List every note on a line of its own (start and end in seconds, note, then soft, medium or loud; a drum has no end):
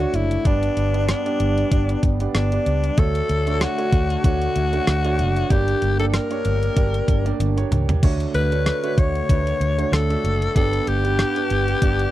0.00 0.43 D3 medium
0.00 0.43 A3 medium
0.00 0.47 A3 medium
0.00 0.43 D4 medium
0.00 0.45 D4 medium
0.00 0.17 F#4 medium
0.00 0.43 F#4 medium
0.00 0.47 F#4 medium
0.00 0.47 C#5 medium
0.00 0.46 D5 medium
0.13 0.36 F#1 medium
0.13 0.48 E4 medium
0.13 closed hi-hat medium
0.31 closed hi-hat medium
0.45 0.68 G1 loud
0.45 1.36 G2 medium
0.45 2.96 G3 medium
0.45 0.82 B3 medium
0.45 2.96 B3 medium
0.45 0.82 D4 medium
0.45 2.96 D4 medium
0.45 1.09 D4 medium
0.45 0.82 G4 medium
0.45 0.83 D5 medium
0.45 kick medium
0.45 closed hi-hat medium
0.63 closed hi-hat soft
0.77 1.12 G1 medium
0.77 closed hi-hat medium
0.93 1.17 B3 medium
0.93 1.18 D4 medium
0.93 1.18 G4 medium
0.93 1.18 D5 medium
0.93 closed hi-hat soft
1.09 2.05 D4 medium
1.09 cross-stick medium
1.09 closed hi-hat medium
1.25 1.62 B3 medium
1.25 1.62 D4 medium
1.25 1.62 G4 medium
1.25 1.62 D5 medium
1.25 closed hi-hat soft
1.40 1.63 G1 medium
1.40 closed hi-hat medium
1.58 closed hi-hat soft
1.71 1.94 G1 loud
1.71 2.08 B3 medium
1.71 2.09 D4 medium
1.71 2.09 G4 medium
1.71 2.09 D5 medium
1.71 kick medium
1.71 closed hi-hat medium
1.89 closed hi-hat soft
2.03 2.26 G1 medium
2.03 kick medium
2.03 closed hi-hat medium
2.20 2.44 B3 medium
2.20 2.44 D4 medium
2.20 2.44 G4 medium
2.20 2.45 D5 medium
2.20 closed hi-hat soft
2.35 2.57 G1 medium
2.35 3.01 D4 medium
2.35 cross-stick loud
2.35 closed hi-hat medium
2.52 2.88 B3 medium
2.52 2.88 D4 medium
2.52 2.88 G4 medium
2.52 2.89 D5 medium
2.52 closed hi-hat medium
2.66 2.89 C#2 medium
2.66 closed hi-hat medium
2.84 closed hi-hat soft
2.98 3.20 D2 medium
2.98 5.48 D3 medium
2.98 3.89 D3 medium
2.98 3.35 A3 medium
2.98 5.48 A3 medium
2.98 3.35 D4 medium
2.98 5.48 F#4 medium
2.98 3.35 F#4 medium
2.98 3.64 A4 loud
2.98 5.48 C#5 medium
2.98 3.35 C#5 medium
2.98 kick loud
2.98 closed hi-hat medium
3.15 closed hi-hat medium
3.29 3.65 D2 medium
3.29 closed hi-hat medium
3.46 3.70 A3 medium
3.46 3.70 D4 medium
3.46 3.71 F#4 medium
3.46 3.71 C#5 medium
3.46 closed hi-hat soft
3.61 4.25 F#4 medium
3.61 cross-stick medium
3.61 closed hi-hat medium
3.78 4.14 A3 medium
3.78 4.14 D4 medium
3.78 4.15 F#4 medium
3.78 4.15 C#5 medium
3.78 closed hi-hat soft
3.92 4.15 D2 loud
3.92 kick medium
3.92 closed hi-hat medium
4.10 closed hi-hat soft
4.24 4.47 D2 medium
4.24 4.61 A3 medium
4.24 4.61 D4 medium
4.24 4.61 F#4 medium
4.24 5.53 F#4 loud
4.24 4.61 C#5 medium
4.24 kick medium
4.24 closed hi-hat medium
4.42 closed hi-hat soft
4.56 4.79 D2 medium
4.56 closed hi-hat medium
4.73 4.96 A3 medium
4.73 4.97 D4 medium
4.73 4.97 F#4 medium
4.73 4.97 C#5 medium
4.73 closed hi-hat soft
4.87 5.21 D2 medium
4.87 cross-stick loud
4.87 closed hi-hat medium
5.04 5.40 A3 medium
5.04 5.41 D4 medium
5.04 5.41 F#4 medium
5.04 5.41 C#5 medium
5.04 closed hi-hat medium
5.19 5.42 F#1 medium
5.19 closed hi-hat medium
5.36 closed hi-hat soft
5.50 5.73 G1 medium
5.50 6.41 G2 medium
5.50 5.87 A#3 medium
5.50 8.01 A#3 medium
5.50 5.87 D4 medium
5.50 8.01 D4 medium
5.50 5.88 G4 medium
5.50 8.01 G4 medium
5.50 5.99 G4 loud
5.50 5.88 D5 medium
5.50 kick loud
5.50 closed hi-hat medium
5.68 closed hi-hat soft
5.82 6.17 G1 medium
5.82 closed hi-hat medium
5.99 6.23 A#3 medium
5.99 6.23 D4 medium
5.99 6.23 G4 medium
5.99 6.06 A4 medium
5.99 6.23 D5 medium
5.99 closed hi-hat soft
6.14 7.36 A#4 loud
6.14 cross-stick medium
6.14 closed hi-hat medium
6.30 6.67 A#3 medium
6.30 6.67 D4 medium
6.30 6.67 G4 medium
6.30 6.67 C#5 medium
6.30 closed hi-hat soft
6.45 6.68 G1 medium
6.45 closed hi-hat medium
6.63 closed hi-hat soft
6.76 6.99 G1 medium
6.76 7.13 A#3 medium
6.76 7.14 D4 medium
6.76 7.14 G4 medium
6.76 7.14 D5 medium
6.76 kick medium
6.76 closed hi-hat medium
6.94 closed hi-hat soft
7.08 7.31 G1 medium
7.08 kick medium
7.08 closed hi-hat medium
7.25 7.49 A#3 medium
7.25 7.49 D4 medium
7.25 7.49 G4 medium
7.25 7.50 D5 medium
7.25 closed hi-hat soft
7.40 7.62 G1 medium
7.40 closed hi-hat medium
7.40 high tom soft
7.57 7.93 A#3 medium
7.57 7.93 D4 medium
7.57 7.93 G4 medium
7.57 7.94 C#5 medium
7.57 closed hi-hat soft
7.71 7.94 C#2 medium
7.71 closed hi-hat medium
7.71 mid tom medium
7.89 closed hi-hat soft
7.89 floor tom medium
8.03 8.26 D2 loud
8.03 10.53 D3 medium
8.03 8.94 D3 medium
8.03 10.53 A3 medium
8.03 8.40 A3 medium
8.03 8.40 D4 medium
8.03 10.53 F#4 medium
8.03 8.40 F#4 medium
8.03 10.53 C#5 medium
8.03 8.41 C#5 medium
8.03 kick medium
8.03 crash medium
8.20 closed hi-hat medium
8.34 8.70 D2 medium
8.34 9.00 B4 loud
8.34 closed hi-hat medium
8.51 8.75 A3 medium
8.51 8.76 D4 medium
8.51 8.76 F#4 medium
8.51 8.76 C#5 medium
8.51 closed hi-hat soft
8.66 cross-stick medium
8.66 closed hi-hat medium
8.83 9.19 A3 medium
8.83 9.20 D4 medium
8.83 9.20 F#4 medium
8.83 9.20 C#5 medium
8.83 closed hi-hat soft
8.98 9.20 D2 medium
8.98 9.95 C#5 loud
8.98 kick medium
8.98 closed hi-hat medium
9.15 closed hi-hat soft
9.29 9.52 D2 medium
9.29 9.66 A3 medium
9.29 9.66 D4 medium
9.29 9.67 F#4 medium
9.29 9.67 B4 medium
9.29 kick medium
9.29 closed hi-hat medium
9.47 closed hi-hat soft
9.60 9.83 D2 medium
9.60 closed hi-hat medium
9.78 10.02 A3 medium
9.78 10.02 D4 medium
9.78 10.02 F#4 medium
9.78 10.02 C#5 medium
9.78 closed hi-hat soft
9.92 10.15 D2 loud
9.92 10.56 A4 medium
9.92 cross-stick loud
9.92 closed hi-hat medium
10.09 10.46 A3 medium
10.09 10.46 D4 medium
10.09 10.46 F#4 medium
10.09 10.46 E5 medium
10.09 closed hi-hat soft
10.24 10.47 F#1 medium
10.24 closed hi-hat medium
10.42 closed hi-hat medium
10.55 10.78 G1 medium
10.55 11.46 G2 medium
10.55 10.92 B3 medium
10.55 12.11 B3 medium
10.55 10.93 D4 medium
10.55 12.11 D4 medium
10.55 10.93 G4 medium
10.55 12.11 G4 medium
10.55 10.89 A4 loud
10.55 10.93 D5 medium
10.55 kick loud
10.55 closed hi-hat medium
10.73 closed hi-hat medium
10.87 11.23 G1 medium
10.87 12.11 G4 loud
10.87 closed hi-hat medium
11.04 11.28 B3 medium
11.04 11.28 D4 medium
11.04 11.28 G4 medium
11.04 11.28 B4 medium
11.04 closed hi-hat soft
11.19 cross-stick medium
11.19 closed hi-hat medium
11.36 11.72 B3 medium
11.36 11.72 D4 medium
11.36 11.72 G4 medium
11.36 11.73 B4 medium
11.36 closed hi-hat soft
11.50 11.73 G1 medium
11.50 closed hi-hat medium
11.68 closed hi-hat soft
11.82 12.05 G1 loud
11.82 12.11 B3 medium
11.82 12.11 D4 medium
11.82 12.11 G4 medium
11.82 12.11 D5 medium
11.82 kick medium
11.82 closed hi-hat medium
11.99 closed hi-hat soft